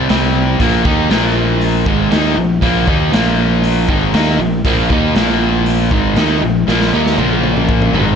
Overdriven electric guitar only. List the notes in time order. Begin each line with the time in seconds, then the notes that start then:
0.09 C3 G3 C4
0.61 A#2 F3 A#3
0.85 D#3 A#3 D#4
1.10 A#2 F3 A#3
1.87 G#2 D#3 G#3
2.11 D#3 A#3 D#4
2.36 A#2 F3
2.61 A#2 F3 A#3
2.87 D#3 A#3 D#4
3.12 A#2 F3 A#3
3.89 G#2 D#3 G#3
4.14 D#3 A#3 D#4
4.40 A#2 F3
4.65 A#2 F3 A#3
4.91 D#3 A#3 D#4
5.16 A#2 F3 A#3
5.91 G#2 D#3 G#3
6.17 D#3 A#3 D#4
6.42 A#2 F3
6.68 A#2 F3 A#3
6.93 D#3 A#3 D#4
7.18 A#2 F3 A#3
7.95 G#2 D#3 G#3